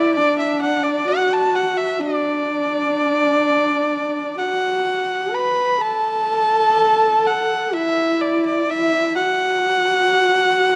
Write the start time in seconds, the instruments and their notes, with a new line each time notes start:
Already playing: horsehead fiddle E4, erhu D5
0.15 horsehead fiddle D4, erhu D5
0.39 erhu E5
0.62 erhu F#5
0.83 erhu D5
1.08 horsehead fiddle F#4, erhu F#5
1.33 erhu A5
1.56 erhu F#5
1.77 erhu E5
2.00 horsehead fiddle D4, erhu D5
4.38 horsehead fiddle F#4, erhu F#5
5.33 horsehead fiddle B4, erhu B5
5.81 horsehead fiddle A4, erhu A5
7.27 erhu F#5
7.74 horsehead fiddle E4, erhu E5
8.21 erhu D5
8.46 erhu D5
8.68 horsehead fiddle E4, erhu E5
9.16 horsehead fiddle F#4, erhu F#5